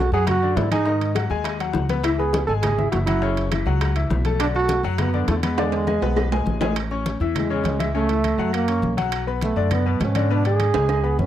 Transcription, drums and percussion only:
0.13 high conga
0.27 high bongo, high conga, low conga, high timbale, claves
0.42 high conga
0.57 high bongo, low bongo, high conga, high timbale, low timbale
0.71 high conga, high timbale, claves
0.86 high bongo, high conga
1.01 high conga, high timbale
1.15 high bongo, high conga, high timbale, claves
1.30 high bongo, high conga
1.44 high bongo, high conga, high timbale, claves
1.59 high bongo, high conga, high timbale
1.73 high bongo, low bongo, high conga
1.89 high bongo, high conga, high timbale
2.04 high bongo, high conga, high timbale, claves
2.19 high conga
2.33 high bongo, high conga, high timbale
2.49 high conga
2.63 high bongo, high conga, low conga, high timbale, claves
2.79 high conga, low conga
2.92 high bongo, low bongo, high conga, high timbale
3.07 high conga, high timbale, claves
3.22 high bongo, high conga
3.37 high conga, high timbale
3.51 high bongo, high conga, high timbale, claves
3.66 high bongo, high conga
3.81 high bongo, high conga, high timbale, claves
3.96 high bongo, high conga, high timbale
4.10 high bongo, low bongo, high conga
4.25 high bongo, high conga, high timbale
4.40 high bongo, high conga, high timbale, claves
4.55 high conga
4.68 high bongo, high conga, high timbale
4.84 high conga
4.98 high bongo, high conga, low conga, high timbale, claves
5.14 high conga
5.28 high bongo, low bongo, high conga, high timbale
5.43 high conga, high timbale, claves
5.58 high bongo, high conga, high timbale
5.72 high conga, high timbale
5.87 high bongo, high conga, high timbale, claves
6.02 high bongo, high conga, low timbale
6.16 high bongo, high conga, low timbale, claves
6.32 high conga, low timbale
6.47 high conga
6.61 low bongo, high conga, low timbale
6.76 high conga, high timbale, claves
6.91 high conga
7.06 high conga, high timbale
7.21 high conga
7.35 high conga, low conga, high timbale, claves
7.51 high conga
7.65 high conga, high timbale, low timbale
7.80 high conga, high timbale, claves
7.95 high conga
8.09 high conga, high timbale
8.24 high conga, high timbale, claves
8.39 high conga
8.53 high conga, high timbale, claves
8.68 high conga, high timbale
8.83 high conga
8.98 high conga, high timbale
9.12 high conga, high timbale, claves
9.28 high conga
9.41 high conga, high timbale
9.57 high conga
9.71 high conga, low conga, high timbale, claves
9.86 high conga
10.01 high conga, high timbale, low timbale
10.15 high conga, high timbale, claves
10.30 high conga
10.45 high conga, high timbale
10.60 high conga, high timbale, claves
10.74 high conga, high timbale
10.89 high conga, high timbale, claves
11.04 high conga
11.19 high conga, low timbale

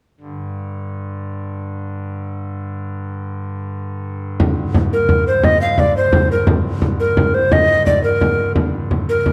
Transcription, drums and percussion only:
4.40 frame drum
4.75 frame drum
5.09 frame drum
5.43 frame drum
5.78 frame drum
6.13 frame drum
6.47 frame drum
6.82 frame drum
7.17 frame drum
7.52 frame drum
7.87 frame drum
8.21 frame drum
8.39 frame drum
8.56 frame drum
8.91 frame drum
9.26 frame drum

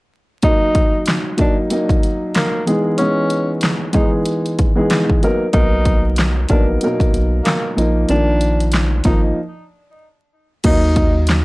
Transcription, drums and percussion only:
0.43 kick, closed hi-hat
0.75 kick, closed hi-hat
1.06 snare, clap, closed hi-hat
1.38 kick, closed hi-hat
1.70 closed hi-hat
1.89 kick, closed hi-hat
2.03 closed hi-hat
2.35 snare, clap, closed hi-hat
2.67 closed hi-hat
2.98 closed hi-hat
3.30 closed hi-hat
3.61 snare, clap, closed hi-hat
3.93 kick, closed hi-hat
4.26 closed hi-hat
4.46 closed hi-hat
4.59 kick, closed hi-hat
4.90 snare, clap, closed hi-hat
5.10 kick
5.23 closed hi-hat
5.53 kick, closed hi-hat
5.85 kick, closed hi-hat
6.16 snare, clap, closed hi-hat
6.49 kick, closed hi-hat
6.81 closed hi-hat
7.00 kick, closed hi-hat
7.14 closed hi-hat
7.45 snare, clap, closed hi-hat
7.78 closed hi-hat
8.09 closed hi-hat
8.41 closed hi-hat
8.60 closed hi-hat
8.72 snare, clap, closed hi-hat
9.04 kick, snare, closed hi-hat
10.64 kick, closed hi-hat, crash
10.96 kick, closed hi-hat
11.27 snare, clap, closed hi-hat

